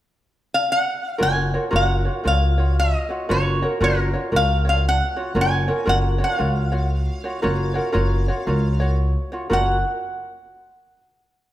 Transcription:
0.54 F5
0.72 F#5
1.07 F5
1.18 F#1 F4 F#4 A#4 C#5
1.23 G#5
1.54 F4 F#4 A#4 C#5
1.71 F#1 F4 F#4 A#4 C#5
1.76 F#5
2.05 F4 F#4 C#5
2.24 C#2 F4 F#4 A#4 C#5 F5
2.58 F4 F#4 C#5
2.80 D#5
3.09 F4 F#4 C#5
3.29 F#1 F4 F#4 A#4 C#5
3.62 F4 F#4 A#4 C#5
3.80 F#1 F4 F#4 A#4 C#5
4.13 F4 F#4 C#5
4.32 C#2 F4 F#4 A#4 C#5
4.36 F5
4.65 F4 F#4 C#5
4.69 F5
4.89 F#5
5.16 F4 F#4 C#5
5.35 F#1 F4 F#4 A#4 C#5
5.41 G#5
5.68 F4 F#4 A#4 C#5
5.86 F#1 F4 F#4 A#4 C#5 F#5
6.18 F4 F#4 C#5
6.24 F5
6.38 C#2 F4 F#4 A#4 C#5
6.72 F4 F#4 C#5
7.24 F4 F#4 C#5
7.42 F#1 F4 F#4 A#4 C#5
7.74 F4 F#4 A#4 C#5
7.92 F#1 F4 F#4 A#4 C#5
8.28 F4 F#4 C#5
8.47 C#2 F4 F#4 A#4 C#5
8.80 F4 F#4 C#5
9.32 F4 F#4 C#5
9.50 F#1 F4 F#4 A#4 C#5 F#5

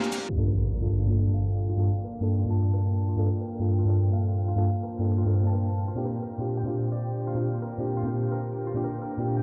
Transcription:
Already playing: C4 D4 F4 G4 A#4 C5 D5 A#5
0.04 closed hi-hat, shaker
0.12 open hi-hat, shaker
0.29 A#3 F4 D5 G5, impact
0.37 G2 A#3 D4 F4 A4
0.47 A#4
0.64 A#4
0.80 G2 A#3 D4 F4 A4
0.99 F4
1.06 G2 A#3 D4
1.10 F4 A4
1.34 F5
1.69 F4
1.77 G2 A#3 D4 F4 A4
2.04 A#4
2.20 G2 A#3 D4 F4 A4
2.39 F4
2.45 G2 A#3 D4
2.49 F4 A5
2.73 A#4
3.08 F4 C5
3.16 G2 A#3 D4 F4 A4
3.26 A#4
3.43 A#4
3.59 G2 A#3 D4 F4 A4
3.78 F4
3.84 G2 A#3 D4
3.88 F4 A4
4.13 F5
4.48 F4
4.55 G2 A#3 D4 F4 A4
4.83 A#4
4.99 G2 A#3 D4 F4 A4
5.18 F4
5.25 G2 A#3 D4 F4 A4
5.41 G2 A#3 D4
5.45 F4 A5
5.53 A#4
5.88 D4 F4 G5
5.95 A#2 C4 D4 F4 G4
6.05 A#4
6.22 A#4
6.38 A#2 C4 D4 F4 G4
6.57 G5
6.63 A#2 C4 D4 F4
6.69 G4
6.92 D5
7.27 F4
7.34 A#2 C4 D4 F4 G4
7.62 A#4
7.78 A#2 C4 D4 F4 G4
7.97 F4
8.03 A#2 C4 D4
8.07 F4 G4
8.31 A#4
8.66 F4 D5
8.74 A#2 C4 D4 F4 G4
8.84 A#4
9.01 A#4
9.17 A#2 C4 D4 F4 G4
9.36 G5

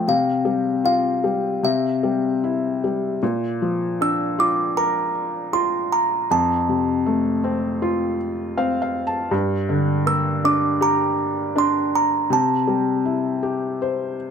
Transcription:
0.08 C3 F5
0.45 G3
0.84 F4 F5
1.24 G3
1.63 C3 E5
2.03 G3
2.44 E4
2.84 G3
3.23 A#2
3.62 F3
4.01 D4 E6
4.39 F4 D6
4.77 A#4 A#5
5.53 F4 C6
5.92 A#5
6.31 F2 A5
6.69 C3
7.06 A3
7.44 C4
7.82 F4
8.57 C4 F5
8.82 F5
9.07 A5
9.31 G2
9.69 D3
10.06 A#3 E6
10.44 D4 D6
10.81 G4 A#5
11.56 D4 C6
11.95 A#5
12.30 C3 A5
12.68 G3
13.05 E4
13.43 G4
13.82 C5

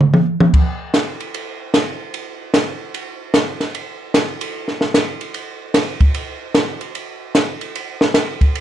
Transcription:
0.01 mid tom
0.14 high tom
0.40 high tom
0.54 kick, crash
0.94 snare, hi-hat pedal, ride
1.20 ride
1.34 ride
1.74 snare, hi-hat pedal, ride
2.14 ride
2.54 snare, hi-hat pedal, ride
2.94 ride
3.34 snare, hi-hat pedal, ride
3.60 snare, ride
3.75 ride
4.14 snare, hi-hat pedal, ride
4.41 ride
4.68 snare
4.81 snare
4.94 snare, hi-hat pedal, ride
5.21 ride
5.34 ride
5.74 snare, hi-hat pedal, ride
6.00 kick, ride
6.14 ride
6.54 snare, hi-hat pedal, ride
6.81 ride
6.95 ride
7.35 snare, hi-hat pedal, ride
7.61 ride
7.75 ride
8.01 snare
8.14 snare, hi-hat pedal, ride
8.41 kick, ride
8.55 ride

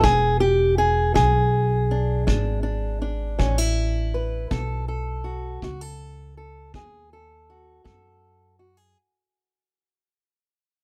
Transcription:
0.01 E1 E2 G#4, kick
0.40 G4
0.78 G#4
1.14 B1 E2 G#4, kick
1.91 D4
2.27 G#1 E2 D4, kick
2.63 D4
3.02 D4
3.39 A1 E2 C#4, kick
3.58 E4
4.14 B4
4.51 B1 B2 A4, kick
4.88 A4
5.24 F#4
5.62 C#2 B2 F#4, kick
5.81 A4
6.37 A4
6.74 D#2 B2 G#4, kick
7.13 A4
7.50 F#4
7.84 F#2 B2 A4, kick
8.59 F#4
8.77 G#4

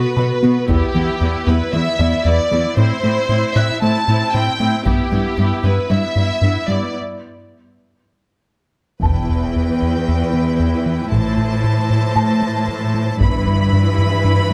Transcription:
Already playing: B3 F#4 A4 B4
0.16 B2 B3 F#4 B4
0.42 B2 B3 F#4
0.68 E2 B3 E4 G4, taiko
0.95 E2 E3 B3 E4
1.20 E2 B3 E4
1.47 E2 B3 E4 B4
1.72 E2 E3 B3 E4 E5
1.98 E2 B3 E4 D5
2.24 E2 B3 E4 D5
2.51 E2 E3 B3 E4
2.77 A2 C4 E4 C5
3.03 A2 A3 C4 E4
3.28 A2 C4 E4
3.54 A2 C4 E4 E5 F#6
3.81 A2 A3 C4 E4 A5
4.07 A2 C4 E4
4.33 A2 C4 E4 G5
4.59 A2 A3 C4 E4
4.85 G2 B3 E4 G4, taiko
5.12 G2 G3 B3 E4
5.38 G2 B3 E4
5.64 G2 B3 E4 B4
5.90 G2 G3 B3 E4 E5
6.16 G2 B3 E4
6.42 G2 B3 E4
6.68 G2 G3 B3 E4 D5
9.02 E1 E2 E3 E4 B4 G5 A5, taiko
9.30 E2
9.56 E2
9.82 E2
10.08 E2
10.34 E3
10.59 E2
10.86 E3
11.11 A1 A2 C5 A5
11.38 A2
11.64 A2
11.90 A2
12.16 A2 A5
12.42 A3
12.68 A2
12.94 A3
13.20 G1 G2 E3 E4 B4 B5, taiko
13.47 G2
13.73 G2
13.98 G2
14.24 G2

